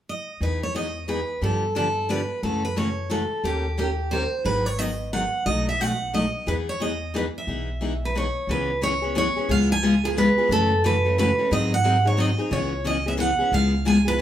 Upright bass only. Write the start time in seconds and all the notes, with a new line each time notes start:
0.41 E2
1.42 G2
2.43 F#2
3.44 D#2
4.45 G#1
5.46 B1
6.47 E2
7.47 B1
8.47 C#2
9.49 C#2
10.49 F#2
11.51 G#2
12.51 C#2
13.52 C#2